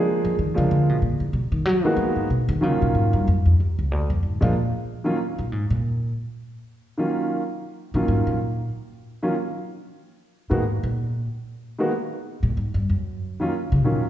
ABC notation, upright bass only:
X:1
M:4/4
L:1/8
Q:"Swing" 1/4=187
K:Abdor
V:1 name="Upright bass" clef=bass
z F, E, D, =D, C, B,, =A,, | C, E, G, _F, =F, A,, C, E, | D, C, A,, =G,, _G,, F,, E,, D,, | =D,, F,, A,, B,,2 z3 |
z B,, A,, B,,3 z2 | z8 | z B,, A,, B,,3 z2 | z8 |
z B,, A,, B,,3 z2 | z4 z B,, A,, =G,, | G,,3 z2 D, B,, z |]